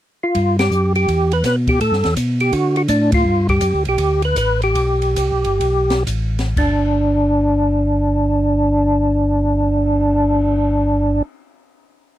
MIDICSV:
0, 0, Header, 1, 5, 480
1, 0, Start_track
1, 0, Key_signature, 1, "major"
1, 0, Tempo, 363196
1, 464, Time_signature, 4, 2, 24, 8
1, 5265, Tempo, 386598
1, 6225, Tempo, 421941
1, 7185, Tempo, 478088
1, 8145, Tempo, 513699
1, 13401, End_track
2, 0, Start_track
2, 0, Title_t, "Tonewheel organ"
2, 0, Program_c, 0, 16
2, 308, Note_on_c, 0, 65, 81
2, 748, Note_off_c, 0, 65, 0
2, 786, Note_on_c, 0, 67, 90
2, 1226, Note_off_c, 0, 67, 0
2, 1267, Note_on_c, 0, 67, 85
2, 1753, Note_off_c, 0, 67, 0
2, 1759, Note_on_c, 0, 71, 90
2, 1902, Note_off_c, 0, 71, 0
2, 1925, Note_on_c, 0, 71, 95
2, 2060, Note_off_c, 0, 71, 0
2, 2233, Note_on_c, 0, 67, 85
2, 2378, Note_off_c, 0, 67, 0
2, 2393, Note_on_c, 0, 69, 92
2, 2832, Note_off_c, 0, 69, 0
2, 3183, Note_on_c, 0, 67, 78
2, 3342, Note_on_c, 0, 66, 86
2, 3347, Note_off_c, 0, 67, 0
2, 3646, Note_off_c, 0, 66, 0
2, 3661, Note_on_c, 0, 66, 80
2, 3734, Note_off_c, 0, 66, 0
2, 3822, Note_on_c, 0, 62, 80
2, 4110, Note_off_c, 0, 62, 0
2, 4154, Note_on_c, 0, 65, 98
2, 4589, Note_off_c, 0, 65, 0
2, 4621, Note_on_c, 0, 67, 91
2, 5067, Note_off_c, 0, 67, 0
2, 5137, Note_on_c, 0, 67, 96
2, 5561, Note_off_c, 0, 67, 0
2, 5593, Note_on_c, 0, 71, 85
2, 5738, Note_off_c, 0, 71, 0
2, 5753, Note_on_c, 0, 71, 86
2, 6041, Note_off_c, 0, 71, 0
2, 6075, Note_on_c, 0, 67, 80
2, 7617, Note_off_c, 0, 67, 0
2, 8167, Note_on_c, 0, 62, 74
2, 12507, Note_off_c, 0, 62, 0
2, 13401, End_track
3, 0, Start_track
3, 0, Title_t, "Tonewheel organ"
3, 0, Program_c, 1, 16
3, 460, Note_on_c, 1, 43, 77
3, 926, Note_off_c, 1, 43, 0
3, 940, Note_on_c, 1, 42, 80
3, 1405, Note_off_c, 1, 42, 0
3, 1432, Note_on_c, 1, 40, 81
3, 1891, Note_off_c, 1, 40, 0
3, 1904, Note_on_c, 1, 47, 78
3, 2366, Note_off_c, 1, 47, 0
3, 2385, Note_on_c, 1, 45, 78
3, 2532, Note_on_c, 1, 43, 56
3, 2537, Note_off_c, 1, 45, 0
3, 2695, Note_off_c, 1, 43, 0
3, 2714, Note_on_c, 1, 40, 68
3, 2855, Note_off_c, 1, 40, 0
3, 2867, Note_on_c, 1, 47, 85
3, 3327, Note_off_c, 1, 47, 0
3, 3340, Note_on_c, 1, 50, 81
3, 3803, Note_off_c, 1, 50, 0
3, 3811, Note_on_c, 1, 45, 86
3, 4278, Note_off_c, 1, 45, 0
3, 4295, Note_on_c, 1, 43, 78
3, 4762, Note_off_c, 1, 43, 0
3, 4775, Note_on_c, 1, 42, 80
3, 4933, Note_off_c, 1, 42, 0
3, 4937, Note_on_c, 1, 38, 52
3, 5101, Note_off_c, 1, 38, 0
3, 5113, Note_on_c, 1, 35, 61
3, 5258, Note_on_c, 1, 38, 80
3, 5260, Note_off_c, 1, 35, 0
3, 5720, Note_off_c, 1, 38, 0
3, 5737, Note_on_c, 1, 33, 85
3, 6212, Note_off_c, 1, 33, 0
3, 6224, Note_on_c, 1, 35, 76
3, 6679, Note_off_c, 1, 35, 0
3, 6695, Note_on_c, 1, 36, 86
3, 6851, Note_off_c, 1, 36, 0
3, 6863, Note_on_c, 1, 35, 52
3, 7023, Note_off_c, 1, 35, 0
3, 7023, Note_on_c, 1, 31, 60
3, 7177, Note_off_c, 1, 31, 0
3, 7184, Note_on_c, 1, 35, 76
3, 7634, Note_off_c, 1, 35, 0
3, 7653, Note_on_c, 1, 33, 86
3, 8133, Note_off_c, 1, 33, 0
3, 8154, Note_on_c, 1, 31, 83
3, 12493, Note_off_c, 1, 31, 0
3, 13401, End_track
4, 0, Start_track
4, 0, Title_t, "Cymbal swell"
4, 8471, Note_on_c, 9, 59, 40
4, 11893, Note_off_c, 9, 59, 0
4, 13401, End_track
5, 0, Start_track
5, 0, Title_t, "Drums"
5, 461, Note_on_c, 9, 51, 53
5, 465, Note_on_c, 9, 36, 22
5, 593, Note_off_c, 9, 51, 0
5, 597, Note_off_c, 9, 36, 0
5, 780, Note_on_c, 9, 51, 57
5, 784, Note_on_c, 9, 38, 69
5, 912, Note_off_c, 9, 51, 0
5, 916, Note_off_c, 9, 38, 0
5, 944, Note_on_c, 9, 44, 55
5, 1076, Note_off_c, 9, 44, 0
5, 1260, Note_on_c, 9, 51, 43
5, 1392, Note_off_c, 9, 51, 0
5, 1427, Note_on_c, 9, 36, 21
5, 1433, Note_on_c, 9, 51, 52
5, 1559, Note_off_c, 9, 36, 0
5, 1565, Note_off_c, 9, 51, 0
5, 1737, Note_on_c, 9, 51, 45
5, 1870, Note_off_c, 9, 51, 0
5, 1900, Note_on_c, 9, 44, 50
5, 1900, Note_on_c, 9, 51, 58
5, 1904, Note_on_c, 9, 36, 16
5, 1904, Note_on_c, 9, 38, 34
5, 2032, Note_off_c, 9, 44, 0
5, 2032, Note_off_c, 9, 51, 0
5, 2036, Note_off_c, 9, 36, 0
5, 2036, Note_off_c, 9, 38, 0
5, 2212, Note_on_c, 9, 51, 40
5, 2213, Note_on_c, 9, 36, 51
5, 2344, Note_off_c, 9, 51, 0
5, 2345, Note_off_c, 9, 36, 0
5, 2383, Note_on_c, 9, 36, 17
5, 2386, Note_on_c, 9, 51, 58
5, 2515, Note_off_c, 9, 36, 0
5, 2518, Note_off_c, 9, 51, 0
5, 2553, Note_on_c, 9, 38, 27
5, 2685, Note_off_c, 9, 38, 0
5, 2690, Note_on_c, 9, 51, 38
5, 2702, Note_on_c, 9, 38, 38
5, 2822, Note_off_c, 9, 51, 0
5, 2834, Note_off_c, 9, 38, 0
5, 2861, Note_on_c, 9, 36, 20
5, 2862, Note_on_c, 9, 44, 52
5, 2862, Note_on_c, 9, 51, 67
5, 2993, Note_off_c, 9, 36, 0
5, 2994, Note_off_c, 9, 44, 0
5, 2994, Note_off_c, 9, 51, 0
5, 3173, Note_on_c, 9, 51, 42
5, 3306, Note_off_c, 9, 51, 0
5, 3338, Note_on_c, 9, 51, 55
5, 3339, Note_on_c, 9, 36, 23
5, 3470, Note_off_c, 9, 51, 0
5, 3471, Note_off_c, 9, 36, 0
5, 3645, Note_on_c, 9, 51, 41
5, 3777, Note_off_c, 9, 51, 0
5, 3810, Note_on_c, 9, 44, 50
5, 3810, Note_on_c, 9, 51, 61
5, 3817, Note_on_c, 9, 36, 24
5, 3942, Note_off_c, 9, 44, 0
5, 3942, Note_off_c, 9, 51, 0
5, 3949, Note_off_c, 9, 36, 0
5, 4124, Note_on_c, 9, 51, 70
5, 4130, Note_on_c, 9, 36, 81
5, 4256, Note_off_c, 9, 51, 0
5, 4262, Note_off_c, 9, 36, 0
5, 4609, Note_on_c, 9, 51, 41
5, 4610, Note_on_c, 9, 36, 49
5, 4741, Note_off_c, 9, 51, 0
5, 4742, Note_off_c, 9, 36, 0
5, 4767, Note_on_c, 9, 44, 52
5, 4767, Note_on_c, 9, 51, 64
5, 4777, Note_on_c, 9, 36, 17
5, 4899, Note_off_c, 9, 44, 0
5, 4899, Note_off_c, 9, 51, 0
5, 4909, Note_off_c, 9, 36, 0
5, 5089, Note_on_c, 9, 51, 40
5, 5221, Note_off_c, 9, 51, 0
5, 5260, Note_on_c, 9, 51, 56
5, 5264, Note_on_c, 9, 36, 22
5, 5385, Note_off_c, 9, 51, 0
5, 5389, Note_off_c, 9, 36, 0
5, 5560, Note_on_c, 9, 51, 44
5, 5685, Note_off_c, 9, 51, 0
5, 5733, Note_on_c, 9, 44, 51
5, 5733, Note_on_c, 9, 51, 59
5, 5738, Note_on_c, 9, 36, 19
5, 5857, Note_off_c, 9, 44, 0
5, 5857, Note_off_c, 9, 51, 0
5, 5862, Note_off_c, 9, 36, 0
5, 6051, Note_on_c, 9, 51, 41
5, 6175, Note_off_c, 9, 51, 0
5, 6220, Note_on_c, 9, 51, 58
5, 6226, Note_on_c, 9, 36, 23
5, 6334, Note_off_c, 9, 51, 0
5, 6340, Note_off_c, 9, 36, 0
5, 6522, Note_on_c, 9, 51, 41
5, 6635, Note_off_c, 9, 51, 0
5, 6687, Note_on_c, 9, 44, 57
5, 6687, Note_on_c, 9, 51, 67
5, 6694, Note_on_c, 9, 36, 22
5, 6800, Note_off_c, 9, 44, 0
5, 6800, Note_off_c, 9, 51, 0
5, 6808, Note_off_c, 9, 36, 0
5, 7007, Note_on_c, 9, 51, 43
5, 7121, Note_off_c, 9, 51, 0
5, 7189, Note_on_c, 9, 36, 19
5, 7190, Note_on_c, 9, 51, 55
5, 7290, Note_off_c, 9, 36, 0
5, 7290, Note_off_c, 9, 51, 0
5, 7487, Note_on_c, 9, 51, 45
5, 7490, Note_on_c, 9, 38, 54
5, 7587, Note_off_c, 9, 51, 0
5, 7590, Note_off_c, 9, 38, 0
5, 7653, Note_on_c, 9, 36, 20
5, 7654, Note_on_c, 9, 44, 53
5, 7654, Note_on_c, 9, 51, 61
5, 7754, Note_off_c, 9, 36, 0
5, 7755, Note_off_c, 9, 44, 0
5, 7755, Note_off_c, 9, 51, 0
5, 7973, Note_on_c, 9, 51, 45
5, 7976, Note_on_c, 9, 38, 35
5, 8074, Note_off_c, 9, 51, 0
5, 8077, Note_off_c, 9, 38, 0
5, 8152, Note_on_c, 9, 36, 53
5, 8156, Note_on_c, 9, 49, 56
5, 8246, Note_off_c, 9, 36, 0
5, 8249, Note_off_c, 9, 49, 0
5, 13401, End_track
0, 0, End_of_file